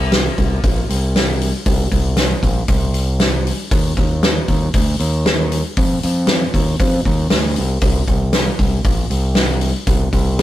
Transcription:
0.00 0.28 C2 medium
0.12 snare medium
0.12 open hi-hat medium
0.38 0.59 C2 medium
0.38 kick medium
0.38 open hi-hat soft
0.64 0.84 A#1 medium
0.64 kick loud
0.64 open hi-hat medium
0.89 1.50 C2 medium
0.89 open hi-hat soft
1.16 snare medium
1.16 open hi-hat medium
1.42 open hi-hat soft
1.66 1.87 C2 medium
1.66 kick loud
1.66 open hi-hat medium
1.92 2.33 C2 medium
1.92 kick medium
1.92 open hi-hat soft
2.17 snare medium
2.17 open hi-hat medium
2.43 2.63 A#1 medium
2.43 kick medium
2.43 open hi-hat soft
2.68 3.50 C2 medium
2.68 kick loud
2.68 open hi-hat medium
2.94 open hi-hat soft
3.20 snare medium
3.20 open hi-hat medium
3.47 open hi-hat soft
3.71 3.92 D#2 medium
3.71 kick loud
3.71 open hi-hat medium
3.97 4.38 D#2 medium
3.97 kick medium
3.97 open hi-hat soft
4.23 snare loud
4.23 open hi-hat soft
4.48 4.69 D#2 medium
4.48 kick medium
4.48 open hi-hat soft
4.74 4.95 D2 medium
4.74 kick medium
4.74 open hi-hat medium
5.00 5.61 D#2 medium
5.00 open hi-hat soft
5.26 snare medium
5.26 open hi-hat medium
5.52 open hi-hat soft
5.77 5.97 F2 medium
5.77 kick loud
5.77 open hi-hat medium
6.03 6.44 F2 medium
6.03 open hi-hat soft
6.27 snare medium
6.27 open hi-hat medium
6.54 6.74 D#2 medium
6.54 kick medium
6.54 open hi-hat medium
6.80 7.00 F2 medium
6.80 kick loud
6.80 open hi-hat medium
7.05 7.29 D#2 medium
7.05 kick medium
7.05 open hi-hat soft
7.30 7.54 D2 medium
7.30 snare medium
7.30 open hi-hat medium
7.56 7.81 C2 medium
7.56 open hi-hat soft
7.81 8.02 C2 medium
7.81 kick loud
7.81 open hi-hat medium
8.08 8.49 C2 medium
8.08 kick medium
8.08 open hi-hat soft
8.33 snare medium
8.33 open hi-hat medium
8.59 8.80 C2 medium
8.59 kick medium
8.59 open hi-hat soft
8.85 9.05 A#1 medium
8.85 kick medium
8.85 open hi-hat medium
9.10 9.71 C2 medium
9.10 open hi-hat soft
9.35 snare medium
9.35 open hi-hat medium
9.61 open hi-hat soft
9.87 10.08 C2 medium
9.87 kick loud
9.87 open hi-hat medium
10.13 10.42 C2 medium
10.13 kick medium
10.13 open hi-hat soft
10.39 snare loud
10.39 open hi-hat medium

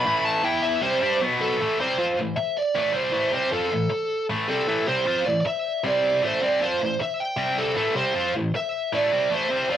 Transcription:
0.00 0.23 B5 loud
0.06 0.44 A2 medium
0.06 0.43 E3 loud
0.06 0.45 A3 loud
0.25 0.45 A5 loud
0.44 0.82 E3 loud
0.44 0.82 B3 loud
0.44 0.82 E4 loud
0.44 0.64 G5 loud
0.63 0.82 E5 loud
0.82 1.02 C3 loud
0.82 1.01 G3 medium
0.82 1.02 C4 loud
0.82 1.20 C5 loud
1.02 1.21 G3 loud
1.02 1.21 D4 loud
1.02 1.21 G4 loud
1.21 1.59 B2 medium
1.21 1.60 F#3 loud
1.21 1.60 B3 loud
1.41 1.80 A4 medium
1.61 1.79 A2 medium
1.61 1.80 E3 medium
1.61 1.80 A3 medium
1.80 1.98 C3 medium
1.80 1.98 G3 medium
1.80 1.98 C4 medium
1.80 2.16 C5 medium
1.98 2.17 F3 medium
1.98 2.18 C4 medium
1.98 2.18 F4 loud
2.17 2.33 A2 medium
2.17 2.34 E3 medium
2.36 2.57 E5 medium
2.36 muted distorted electric guitar stroke medium
2.58 2.77 D5 medium
2.75 2.92 A2 medium
2.75 2.93 E3 medium
2.75 2.93 A3 medium
2.75 2.95 D5 medium
2.93 3.11 C3 medium
2.93 3.12 G3 medium
2.93 3.13 C4 medium
2.93 3.33 C5 medium
3.12 3.31 A2 medium
3.12 3.32 E3 medium
3.12 3.32 A3 medium
3.32 3.51 C3 medium
3.32 3.52 G3 medium
3.32 3.51 C4 medium
3.32 3.52 C5 medium
3.52 3.71 F3 medium
3.52 3.71 C4 loud
3.52 3.72 F4 loud
3.52 4.26 A4 medium
3.71 3.87 A2 medium
3.71 3.87 E3 medium
3.90 muted distorted electric guitar stroke medium
4.30 4.48 A2 medium
4.30 4.49 E3 medium
4.30 4.49 A3 medium
4.49 4.67 C3 medium
4.49 4.68 G3 medium
4.49 4.68 C4 medium
4.49 4.87 A4 medium
4.68 4.87 A2 medium
4.68 4.87 E3 loud
4.68 4.87 A3 loud
4.88 5.05 C3 medium
4.88 5.07 G3 medium
4.88 5.06 C4 loud
4.88 5.24 C5 loud
5.06 5.25 F3 medium
5.06 5.26 C4 medium
5.06 5.26 F4 loud
5.26 5.42 A2 medium
5.26 5.42 E3 medium
5.26 5.39 D5 medium
5.41 5.46 D5 medium
5.45 5.82 E5 medium
5.45 muted distorted electric guitar stroke medium
5.84 6.22 C3 medium
5.84 6.22 G3 medium
5.84 6.23 C4 loud
5.84 6.21 D5 medium
6.23 6.41 A2 medium
6.23 6.42 E3 loud
6.23 6.42 A3 loud
6.23 6.42 C5 medium
6.41 6.61 C3 medium
6.41 6.61 G3 medium
6.41 6.60 C4 medium
6.41 6.63 D5 medium
6.61 6.80 F3 medium
6.61 6.80 C4 medium
6.61 6.81 F4 medium
6.61 7.02 C5 medium
6.80 6.96 A2 medium
6.80 6.96 E3 medium
7.00 7.21 E5 medium
7.00 muted distorted electric guitar stroke medium
7.20 7.60 G5 loud
7.37 7.76 C3 medium
7.37 7.76 G3 medium
7.37 7.76 C4 loud
7.58 7.76 A4 medium
7.76 7.94 A2 medium
7.76 7.95 E3 medium
7.76 7.95 A3 loud
7.76 7.95 A4 medium
7.94 8.14 C3 medium
7.94 8.15 G3 medium
7.94 8.14 C4 medium
7.94 8.33 C5 medium
8.14 8.34 F3 medium
8.14 8.34 C4 loud
8.14 8.35 F4 loud
8.35 8.51 A2 medium
8.35 8.51 E3 medium
8.54 8.91 E5 medium
8.54 muted distorted electric guitar stroke medium
8.93 9.12 A2 medium
8.93 9.12 E3 medium
8.93 9.12 A3 medium
8.93 9.34 D5 medium
9.12 9.30 C3 medium
9.12 9.30 G3 medium
9.12 9.30 C4 medium
9.30 9.49 A2 medium
9.30 9.50 E3 loud
9.30 9.50 A3 loud
9.34 9.73 C5 medium
9.50 9.69 C3 medium
9.50 9.69 G3 medium
9.50 9.69 C4 loud
9.69 9.77 F3 medium
9.69 9.77 C4 medium
9.69 9.77 F4 loud
9.69 9.77 D5 medium

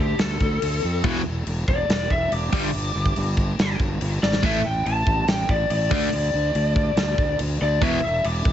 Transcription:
0.00 0.12 D2 medium
0.00 0.19 G4 loud
0.19 0.37 D2 medium
0.19 1.02 A4 loud
0.19 snare loud
0.19 crash medium
0.40 0.58 D2 medium
0.40 kick medium
0.62 0.79 D2 medium
0.62 crash medium
0.84 1.01 F2 medium
1.04 1.22 E1 loud
1.04 1.21 E2 medium
1.04 1.21 B2 loud
1.04 1.21 E3 loud
1.04 kick loud
1.04 crash medium
1.16 snare soft
1.25 1.42 E1 medium
1.47 1.64 E1 medium
1.47 crash medium
1.68 1.85 E1 medium
1.68 2.09 D5 medium
1.68 kick medium
1.88 2.06 E1 medium
1.88 snare loud
1.88 crash medium
2.10 2.28 E1 medium
2.10 2.31 E5 loud
2.10 kick medium
2.32 2.49 E1 medium
2.32 2.52 D6 loud
2.32 crash medium
2.53 2.70 G1 medium
2.53 2.69 G2 loud
2.53 2.70 D3 loud
2.53 2.70 G3 loud
2.53 3.76 D6 loud
2.53 kick loud
2.53 crash loud
2.74 2.91 G1 loud
2.74 crash medium
2.95 3.12 G1 medium
3.06 kick medium
3.16 3.51 G1 medium
3.16 crash medium
3.37 kick medium
3.59 3.76 G1 medium
3.59 snare loud
3.59 crash medium
3.80 3.97 G1 medium
3.80 kick medium
4.01 4.19 G1 medium
4.01 crash medium
4.23 4.40 G#1 medium
4.23 4.43 D5 loud
4.23 snare medium
4.33 snare medium
4.43 4.61 A1 loud
4.43 4.60 A2 medium
4.43 4.60 E3 loud
4.43 4.61 A3 loud
4.43 4.64 E5 loud
4.43 kick loud
4.43 splash medium
4.43 crash medium
4.65 4.82 A1 medium
4.65 4.85 G5 medium
4.86 5.03 A1 medium
4.86 5.27 A5 loud
4.86 crash medium
5.07 5.24 A1 medium
5.07 kick medium
5.28 5.45 A1 medium
5.28 5.49 G5 medium
5.28 snare loud
5.28 crash medium
5.49 5.66 A1 medium
5.49 5.70 D5 medium
5.49 kick medium
5.70 5.87 A1 medium
5.70 5.91 D5 loud
5.70 crash medium
5.91 6.09 D2 medium
5.91 6.08 D3 loud
5.91 6.08 A3 loud
5.91 6.09 D4 loud
5.91 6.13 D5 medium
5.91 kick loud
5.91 crash loud
6.12 6.30 D2 loud
6.12 7.37 D5 loud
6.12 crash medium
6.34 6.51 D2 medium
6.55 6.90 D2 medium
6.55 crash medium
6.76 kick medium
6.96 7.14 D2 medium
6.96 snare loud
6.96 crash medium
7.18 7.36 D2 medium
7.18 kick medium
7.39 7.57 D2 medium
7.39 crash medium
7.61 7.79 D2 medium
7.61 7.82 D5 loud
7.82 8.00 E1 loud
7.82 7.99 E2 loud
7.82 7.99 B2 loud
7.82 8.00 E3 loud
7.82 8.03 E5 loud
7.82 kick loud
7.82 crash medium
8.04 8.21 E1 medium
8.04 8.24 E5 medium
8.24 8.42 E1 medium
8.24 8.53 D6 loud
8.24 crash medium
8.45 8.53 E1 medium
8.45 kick medium

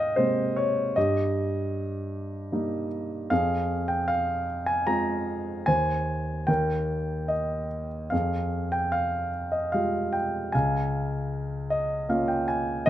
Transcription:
0.00 0.92 G#2 soft
0.00 0.16 C5 soft
0.00 0.96 D#5 medium
0.00 0.98 F5 medium
0.00 0.98 G5 medium
0.16 0.94 C3 soft
0.16 0.94 G#3 soft
0.16 0.94 A#3 soft
0.16 0.58 C5 medium
0.56 0.97 C#5 medium
0.96 3.27 G2 soft
0.96 2.88 G4 soft
0.96 2.87 D#5 medium
2.52 3.28 G3 soft
2.52 3.28 A#3 soft
2.52 3.29 D#4 soft
3.30 5.64 F2 soft
3.30 4.45 G#4 medium
3.30 3.91 F5 medium
3.88 4.09 G5 medium
4.08 4.69 F5 medium
4.66 4.88 G#5 medium
4.87 5.65 G#3 soft
4.87 5.65 C4 soft
4.87 5.65 F4 soft
4.87 5.69 A#5 medium
5.66 6.46 D#2 soft
5.66 6.44 C5 soft
5.66 6.50 G#5 medium
6.47 8.08 D#2 soft
6.47 7.67 A#4 soft
6.47 7.32 G5 medium
7.28 7.87 D#5 medium
8.10 10.50 F2 soft
8.10 9.30 G#4 soft
8.10 8.74 F5 medium
8.72 8.94 G5 medium
8.92 9.55 F5 medium
9.52 9.73 D#5 medium
9.72 10.51 G3 soft
9.72 10.52 G#3 soft
9.72 10.52 F4 soft
9.72 10.14 F5 medium
10.13 10.50 G5 medium
10.52 12.84 C#2 medium
10.52 12.08 F5 soft
10.52 12.44 G#5 medium
11.70 12.07 D#5 medium
12.09 12.85 A#3 soft
12.09 12.86 C#4 soft
12.09 12.86 F4 soft
12.09 12.28 F5 soft
12.28 12.47 G5 medium
12.48 12.85 G#5 medium
12.86 12.90 D#5 medium

